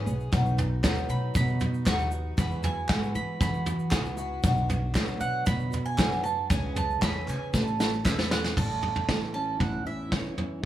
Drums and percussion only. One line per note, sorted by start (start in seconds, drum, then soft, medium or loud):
0.07 shaker medium
0.20 shaker soft
0.33 kick loud
0.33 floor tom loud
0.33 shaker medium
0.46 shaker soft
0.58 floor tom medium
0.58 shaker medium
0.84 kick loud
0.84 snare loud
0.84 clap medium
0.84 shaker medium
0.97 shaker soft
1.09 shaker medium
1.35 kick loud
1.35 floor tom loud
1.35 shaker loud
1.48 shaker soft
1.60 floor tom medium
1.60 shaker medium
1.74 shaker soft
1.86 kick loud
1.86 snare loud
1.86 clap medium
1.86 shaker medium
1.99 shaker soft
2.11 shaker medium
2.38 kick loud
2.38 floor tom loud
2.38 shaker medium
2.51 shaker soft
2.63 floor tom loud
2.63 shaker medium
2.88 kick loud
2.88 snare loud
2.88 clap loud
2.88 shaker medium
3.03 shaker soft
3.15 shaker medium
3.41 kick loud
3.41 floor tom loud
3.41 shaker loud
3.54 shaker soft
3.66 floor tom medium
3.66 shaker medium
3.79 shaker soft
3.91 kick loud
3.91 snare loud
3.91 clap loud
3.91 shaker loud
4.05 shaker soft
4.17 shaker medium
4.44 kick loud
4.44 floor tom loud
4.44 shaker loud
4.57 shaker soft
4.70 floor tom loud
4.70 shaker medium
4.94 kick loud
4.94 snare loud
4.94 clap loud
4.94 shaker medium
5.08 shaker soft
5.21 shaker medium
5.46 kick loud
5.46 floor tom loud
5.46 shaker loud
5.59 shaker soft
5.72 floor tom medium
5.72 shaker medium
5.86 shaker soft
5.98 kick loud
5.98 snare loud
5.98 clap loud
5.98 shaker medium
6.12 shaker soft
6.25 shaker medium
6.50 kick loud
6.50 floor tom loud
6.50 shaker medium
6.76 floor tom medium
6.76 shaker medium
6.90 shaker soft
7.02 kick loud
7.02 snare loud
7.02 clap medium
7.02 shaker medium
7.28 clap medium
7.28 shaker medium
7.54 kick loud
7.54 snare medium
7.54 shaker loud
7.67 shaker soft
7.80 snare medium
7.80 shaker medium
7.93 shaker soft
8.05 kick loud
8.05 snare medium
8.05 clap medium
8.05 shaker medium
8.19 snare medium
8.31 snare loud
8.31 shaker medium
8.44 snare medium
8.44 shaker soft
8.57 kick loud
8.57 floor tom loud
8.57 crash medium
8.83 floor tom medium
8.96 floor tom medium
9.09 kick medium
9.09 snare loud
9.60 kick medium
9.60 floor tom loud
10.12 kick loud
10.12 snare medium
10.38 floor tom medium